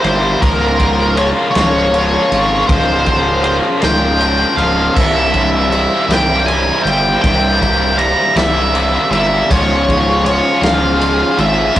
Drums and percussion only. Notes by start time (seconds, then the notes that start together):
0.04 ride
0.42 kick, ride
0.80 kick, ride
1.17 ride
1.55 snare, ride
1.94 ride
2.32 ride
2.69 kick, ride
3.06 kick, ride
3.44 ride
3.82 snare, ride
4.20 ride
4.58 ride
4.96 kick, crash
5.34 kick, ride
5.72 ride
6.10 snare, ride
6.48 ride
6.87 ride
7.24 kick, ride
7.62 kick, ride
7.99 ride
8.36 snare, ride
8.75 ride
9.13 ride
9.51 kick, ride
9.89 kick, ride
10.26 ride
10.63 snare, ride
11.01 ride
11.39 ride
11.76 kick, ride